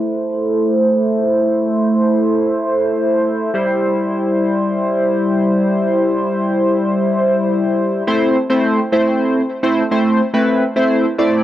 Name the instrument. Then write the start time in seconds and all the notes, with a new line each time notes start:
analog polysynth
Already playing: A3 E4 C5
3.54 G3 E4 C5
8.07 A3 C4 E4 C5
8.50 A3 C4 E4 C5
8.92 A3 C4 E4 C5
9.63 A3 C4 E4 C5
9.91 A3 C4 E4 C5
10.33 A3 C4 E4 B4
10.76 A3 C4 E4 C5
11.18 A3 C4 E4 D5